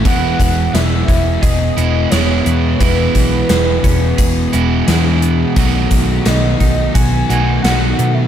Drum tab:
HH |xxxxxxxx|xxxxxxxx|xxxxxxxx|
SD |--o---o-|--o---o-|--o---o-|
BD |oo-oo---|oo-oo---|oo-oo---|